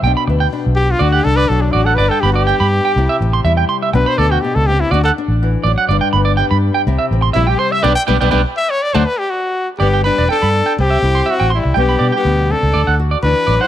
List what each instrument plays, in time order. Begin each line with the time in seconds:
0.03 fingered electric bass B1, nylon-string guitar B2 D4, clean electric guitar G5
0.17 clean electric guitar B5
0.27 fingered electric bass D2, nylon-string guitar B3, muted clean electric guitar stroke
0.40 clean electric guitar G5
0.53 nylon-string guitar D4
0.66 fingered electric bass B1
0.76 trumpet G4
0.91 trumpet F4
0.99 fingered electric bass D2, nylon-string guitar D3 D4, trumpet F#4, clean electric guitar D5
1.12 trumpet G4, clean electric guitar F#5
1.24 fingered electric bass C2, nylon-string guitar D4, trumpet A4
1.37 trumpet B4, clean electric guitar D5
1.49 fingered electric bass B1, nylon-string guitar F#3 F#4, trumpet A4
1.61 trumpet D4
1.72 fingered electric bass A1, trumpet F#4, clean electric guitar D5
1.85 trumpet A4, clean electric guitar F#5
1.95 fingered electric bass G1, trumpet B4, clean electric guitar D5
1.99 nylon-string guitar G2 D4
2.09 trumpet A4, clean electric guitar G5
2.21 fingered electric bass G1, trumpet G4, clean electric guitar B5
2.25 nylon-string guitar B3
2.33 trumpet G4, clean electric guitar D5
2.47 nylon-string guitar D4, clean electric guitar G5, muted nylon-string guitar stroke
2.60 fingered electric bass G2, clean electric guitar B5
2.85 clean electric guitar G5
2.96 fingered electric bass C2, nylon-string guitar C3 E4
3.09 clean electric guitar E5
3.21 fingered electric bass A1, muted nylon-string guitar stroke
3.33 clean electric guitar C6
3.44 fingered electric bass E2, nylon-string guitar G3 E4, clean electric guitar E5
3.57 clean electric guitar G5
3.69 clean electric guitar C6
3.83 clean electric guitar E5
3.93 fingered electric bass B1, nylon-string guitar B2 D4, trumpet B4, muted clean electric guitar stroke
4.06 trumpet C5, clean electric guitar B5
4.18 fingered electric bass D2, nylon-string guitar B3, trumpet A4, clean electric guitar D5
4.31 trumpet F#4, clean electric guitar G5
4.41 nylon-string guitar B2, trumpet G4
4.55 fingered electric bass C#2, trumpet A4
4.67 nylon-string guitar C3, trumpet G4
4.81 trumpet E4
4.91 fingered electric bass D2, nylon-string guitar D4, trumpet F#4, clean electric guitar D5, muted nylon-string guitar stroke
5.04 trumpet A4, clean electric guitar F#5
5.18 nylon-string guitar D4
5.28 fingered electric bass A1
5.43 nylon-string guitar E3
5.63 fingered electric bass A1, nylon-string guitar F#3, clean electric guitar D5
5.78 clean electric guitar F#5
5.89 fingered electric bass G1, nylon-string guitar G2 D4, clean electric guitar D5
6.01 clean electric guitar G5
6.13 fingered electric bass G1, nylon-string guitar B3, clean electric guitar B5
6.25 clean electric guitar D5
6.37 nylon-string guitar G3 D4, clean electric guitar G5
6.51 fingered electric bass G2, clean electric guitar B5
6.74 clean electric guitar G5
6.87 fingered electric bass C2, nylon-string guitar C3 E4
6.99 clean electric guitar E5
7.11 fingered electric bass A1, nylon-string guitar C4
7.22 clean electric guitar C6
7.33 fingered electric bass A#1, nylon-string guitar G3 C4, trumpet E4, clean electric guitar E5
7.47 trumpet G4, clean electric guitar G5
7.59 trumpet C5, clean electric guitar C6
7.72 trumpet E5, clean electric guitar E5
7.83 fingered electric bass B1, nylon-string guitar G3 B3 D4, clean electric guitar B4 D5 G5, trumpet D5
7.95 trumpet G5
8.07 fingered electric bass B1, nylon-string guitar G3 B3 D4, clean electric guitar B4 D5 G5
8.21 fingered electric bass B1, nylon-string guitar G3 B3 D4, clean electric guitar B4 D5 G5
8.31 fingered electric bass B1, nylon-string guitar G3 B3 D4, clean electric guitar B4 D5 G5
8.57 trumpet E5
8.70 trumpet C#5
8.82 trumpet D5
8.94 fingered electric bass D2, nylon-string guitar F#3 A3 D4, trumpet C5, clean electric guitar D5 F#5 A5
9.06 trumpet B4
9.19 trumpet G4
9.30 trumpet F#4
9.79 fingered electric bass G1, nylon-string guitar G2 G3 B3 D4, alto saxophone B3, trumpet G4, clean electric guitar D5
9.94 clean electric guitar G5
10.04 nylon-string guitar D4, alto saxophone D4, trumpet B4, clean electric guitar B5
10.18 fingered electric bass E1, clean electric guitar D5
10.28 nylon-string guitar G3, trumpet A4, clean electric guitar G5
10.32 alto saxophone D4
10.42 fingered electric bass G2, clean electric guitar B5
10.66 clean electric guitar G5
10.78 fingered electric bass C2, nylon-string guitar C3, alto saxophone C4, trumpet G4
10.90 clean electric guitar E5
11.03 fingered electric bass C2, nylon-string guitar E4
11.15 clean electric guitar C6
11.26 nylon-string guitar G3, clean electric guitar E5
11.31 alto saxophone C4, trumpet F#4
11.40 fingered electric bass A1, clean electric guitar G5
11.50 clean electric guitar C6
11.55 alto saxophone G3, trumpet E4
11.64 fingered electric bass C2, muted clean electric guitar stroke
11.74 fingered electric bass B1, nylon-string guitar B2 G3 B3 D4, clean electric guitar G5
11.79 alto saxophone B3, trumpet G4
11.89 clean electric guitar B5
11.99 fingered electric bass B2, nylon-string guitar D4, clean electric guitar D5
12.12 trumpet G4, clean electric guitar G5
12.18 alto saxophone B3
12.25 fingered electric bass D2, nylon-string guitar B2
12.50 nylon-string guitar C3, alto saxophone D4, trumpet A4
12.63 fingered electric bass C#2
12.74 fingered electric bass D2, nylon-string guitar D3, clean electric guitar D5
12.87 fingered electric bass D2, clean electric guitar F#5
12.99 nylon-string guitar F#4
13.11 clean electric guitar D5
13.23 fingered electric bass D2, nylon-string guitar E3, alto saxophone D4, trumpet B4
13.47 fingered electric bass A1, nylon-string guitar F#3, clean electric guitar D5
13.61 alto saxophone E4, trumpet C5, clean electric guitar F#5